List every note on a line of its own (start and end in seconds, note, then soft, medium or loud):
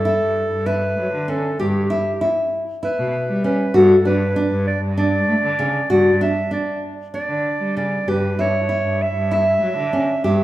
0.00 0.68 A4 medium
0.05 0.47 E4 medium
0.21 0.46 G2 medium
0.51 0.89 G2 medium
0.66 1.08 E4 medium
0.66 1.32 B4 medium
0.99 1.11 F#3 medium
1.13 1.39 D3 medium
1.28 1.49 C#4 medium
1.28 1.60 A4 medium
1.59 1.85 G2 medium
1.59 1.81 G4 medium
1.59 2.49 G4 medium
1.90 2.11 E4 medium
2.21 2.63 E4 medium
2.83 3.24 E4 medium
2.83 3.41 B4 medium
2.99 3.11 B2 medium
3.29 3.54 G3 medium
3.44 3.65 C#4 medium
3.44 3.78 B4 medium
3.74 3.99 G2 medium
3.74 3.95 F#4 medium
3.74 4.06 A4 medium
4.05 4.30 G2 medium
4.05 4.26 D4 medium
4.05 4.64 B4 medium
4.36 4.78 D4 medium
4.51 4.76 G2 medium
4.68 4.81 D5 medium
4.82 5.19 G2 medium
4.97 5.39 D4 medium
4.97 5.86 D5 medium
5.28 5.40 A3 medium
5.43 5.68 D3 medium
5.59 5.80 C#3 medium
5.90 6.14 G2 medium
5.90 6.11 F#4 medium
5.90 6.19 D5 medium
6.21 6.42 D4 medium
6.21 6.50 E5 medium
6.51 6.93 D4 medium
6.51 6.84 D5 medium
7.14 7.56 D4 medium
7.14 7.72 D5 medium
7.28 7.41 D3 medium
7.59 7.85 G3 medium
7.77 7.97 C#3 medium
7.77 8.10 D5 medium
8.07 8.32 G2 medium
8.07 8.29 G4 medium
8.07 8.42 B4 medium
8.37 8.63 G2 medium
8.37 8.59 E4 medium
8.37 9.04 C#5 medium
8.69 9.11 E4 medium
8.84 9.09 G2 medium
9.02 9.32 E5 medium
9.15 9.53 G2 medium
9.31 9.73 E4 medium
9.31 10.21 E5 medium
9.61 9.74 F#3 medium
9.77 10.02 D3 medium
9.93 10.14 C#4 medium
10.24 10.44 G2 medium
10.24 10.44 G4 medium
10.24 10.44 E5 medium